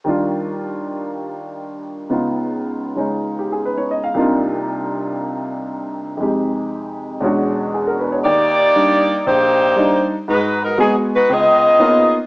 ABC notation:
X:1
M:4/4
L:1/16
Q:"Swing" 1/4=118
K:Eb
V:1 name="Saxophone section"
z16 | z16 | z16 | z16 |
[B,EGd]8 [B,EGc]6 z2 | [A,E_G_c]2 [_G,_CEB]2 [G,CEA]2 [A,EGc]2 [CFAe]6 z2 |]
V:2 name="Upright piano"
z16 | z8 z2 G A _c _d e f | z16 | z12 ^G B =B ^c |
E,,4 [G,DE]2 z2 B,,,4 [G,DE]2 z2 | A,,4 [A,_C_G]2 z2 _D,,4 [B,C_DEF]2 z2 |]
V:3 name="Upright piano"
[E,,E,G,DF]16 | [_D,,_D,_CEF]6 [D,A,_DE]8- [D,A,DE]2 | [C,,C,B,DEF]16 | [F,,C,A,EG]8 [=E,,=B,,^G,^CD^F]8 |
z16 | z16 |]